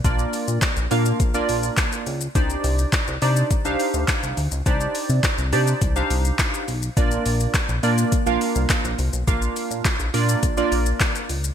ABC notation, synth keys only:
X:1
M:4/4
L:1/16
Q:1/4=104
K:Bb
V:1 name="Synth keys"
[B,DFBd]4 z2 [B,DFBf]2 z [B,DFBd]4- [B,DFBd] z2 | [DEGcd]4 z2 [DEGcd]2 z [DEGcf]4- [DEGcf] z2 | [DEGcd]4 z2 [DEGcd]2 z [DEGcf]4- [DEGcf] z2 | [B,DFBd]4 z2 [B,DFBd]2 z [B,DFBf]4- [B,DFBf] z2 |
[B,DFBf]4 z2 [B,DFBd]2 z [B,DFBd]4- [B,DFBd] z2 |]